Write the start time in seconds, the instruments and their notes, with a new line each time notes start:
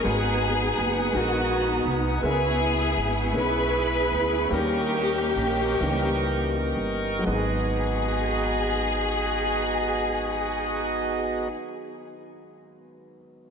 Already playing: tonewheel organ G#5
0.03 upright bass G#1, upright piano G#2 G#3 B3 D#4 F#4, tonewheel organ B3 F#5 D#6, string section B3 D#4 G#4
0.07 upright piano B4
0.78 upright bass F#1
1.12 upright bass A#1, upright piano G#3 B3 D#4 F#4 A#4
1.16 string section B3 D#4 F#4
1.85 upright bass C2
2.22 upright bass C#2, upright piano C#3 G#3 B3 C#4 E4, string section B3 E4 G#4, tonewheel organ E5 C#6
2.26 upright piano A#4
2.33 upright piano B4
2.97 upright bass G#1
3.32 upright bass B1, upright piano G#3 B3 C#4 D#4 B4
3.38 string section E4 G#4 B4, upright piano E4
4.12 upright bass D2
4.49 upright bass D#2, upright piano D#3 G3 A#3 C#4 D#4 A#4, tonewheel organ A#4 D#5 G5
4.54 string section A#3 C#4 G4
5.35 upright bass A#1
5.80 upright bass C#2, upright piano E3 A#3 C#4 D#4 A#4
5.86 upright piano G3
6.75 upright bass G1
7.19 upright piano F#3 G#3
7.26 upright bass G#1, upright piano G#1 B3, tonewheel organ B3 D#4 F#4 G#4 D#5, string section G#4
7.31 upright piano D#4
7.35 upright piano G#4